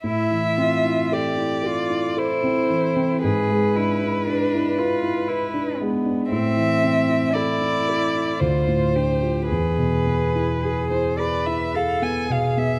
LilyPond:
<<
  \new Staff \with { instrumentName = "Violin" } { \time 3/4 \key a \minor \tempo 4 = 56 e''4 d''4 c''4 | b'2~ b'8 r8 | e''4 d''4 c''4 | b'4~ b'16 c''16 d''16 e''16 f''16 gis''16 f''16 e''16 | }
  \new Staff \with { instrumentName = "Cello" } { \time 3/4 \key a \minor e'8 f'8 g'8 f'8 e'4 | gis'8 e'8 d'8 f'8 e'8 b8 | c'4 e'4 f'8 g'8 | gis'4 gis'8 b'8 a'8 gis'8 | }
  \new Staff \with { instrumentName = "Grand piano" } { \time 3/4 \key a \minor a,16 e16 c'16 e'16 a'16 e'16 a'16 e'16 a'16 c'16 e16 c'16 | gis,16 gis16 d'16 e'16 b'16 e'16 b'16 e'16 b'16 d'16 gis16 d'16 | a,16 e16 c'16 e'16 a'16 e'16 a'16 e'16 d,16 a,16 d'16 f'16 | e,16 b,16 b16 e'16 gis'16 e'16 gis'16 e'16 gis'16 b16 b,16 b16 | }
>>